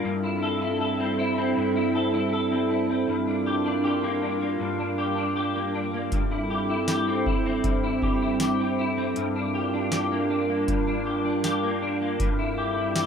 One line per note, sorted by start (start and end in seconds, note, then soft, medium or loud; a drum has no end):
0.00 6.09 G3 medium
0.00 0.12 A#3 medium
0.00 0.12 D4 medium
0.00 0.12 A#4 medium
0.04 1.56 G2 medium
0.04 3.05 C4 medium
0.04 3.05 E4 medium
0.04 3.05 A4 medium
0.04 3.05 E5 medium
0.23 0.60 E4 medium
0.42 0.79 A4 medium
0.61 1.18 E4 medium
0.80 1.94 A4 medium
1.00 1.37 C4 medium
1.19 1.75 E4 medium
1.38 2.50 C4 medium
1.57 3.07 G2 medium
1.76 2.13 E4 medium
1.95 2.31 A4 medium
2.14 2.69 E4 medium
2.33 3.16 A4 medium
2.51 2.88 C4 medium
2.70 3.16 E4 medium
2.90 3.16 C4 medium
3.08 4.59 G2 medium
3.08 6.09 D4 medium
3.08 6.09 F4 medium
3.08 6.09 A#4 medium
3.08 6.09 F5 medium
3.27 3.64 D4 medium
3.46 3.84 G4 medium
3.65 4.21 D4 medium
3.84 4.98 G4 medium
4.03 4.40 A#3 medium
4.22 4.78 D4 medium
4.41 5.54 A#3 medium
4.60 6.11 G2 medium
4.79 5.16 D4 medium
4.98 5.36 G4 medium
5.17 5.73 D4 medium
5.36 6.50 G4 medium
5.55 5.92 A#3 medium
5.75 6.20 D4 medium
5.93 6.20 A#3 medium
6.12 7.63 G2 medium
6.12 9.13 G3 medium
6.12 9.13 C4 medium
6.12 9.13 E4 medium
6.12 9.13 A4 medium
6.12 9.13 E5 medium
6.12 kick loud
6.12 closed hi-hat medium
6.31 6.68 E4 medium
6.50 6.88 G4 medium
6.69 7.25 E4 medium
6.88 8.02 G4 medium
6.88 snare loud
6.88 closed hi-hat medium
6.88 tambourine medium
7.07 7.44 C4 medium
7.26 7.82 E4 medium
7.26 kick loud
7.46 8.58 C4 medium
7.64 9.15 G2 medium
7.64 kick loud
7.64 closed hi-hat medium
7.83 8.20 E4 medium
8.02 8.40 G4 medium
8.02 kick medium
8.22 8.77 E4 medium
8.40 9.54 G4 medium
8.40 snare loud
8.40 closed hi-hat medium
8.40 tambourine medium
8.60 8.96 C4 medium
8.79 9.24 E4 medium
8.97 9.24 C4 medium
9.16 10.66 G2 medium
9.16 13.06 G3 medium
9.16 12.17 D4 medium
9.16 12.17 F4 medium
9.16 12.17 A#4 medium
9.16 12.17 F5 medium
9.16 closed hi-hat medium
9.36 9.72 D4 medium
9.54 9.92 G4 medium
9.73 10.29 D4 medium
9.92 11.06 G4 medium
9.92 snare loud
9.92 closed hi-hat medium
9.92 tambourine medium
10.11 10.48 A#3 medium
10.30 10.86 D4 medium
10.49 11.62 A#3 medium
10.68 12.19 G2 medium
10.68 kick medium
10.68 closed hi-hat medium
10.87 11.24 D4 medium
11.06 11.44 G4 medium
11.25 11.81 D4 medium
11.44 12.57 G4 medium
11.44 snare loud
11.44 closed hi-hat medium
11.44 tambourine medium
11.63 12.00 A#3 medium
11.82 12.28 D4 medium
12.01 12.28 A#3 medium
12.20 13.06 G2 medium
12.20 13.06 C4 medium
12.20 13.06 E4 medium
12.20 13.06 A4 medium
12.20 13.06 E5 medium
12.20 kick loud
12.20 closed hi-hat medium
12.39 12.75 E4 medium
12.58 12.95 G4 medium
12.77 13.06 E4 medium
12.95 13.06 G4 medium
12.95 snare loud
12.95 closed hi-hat medium
12.95 tambourine medium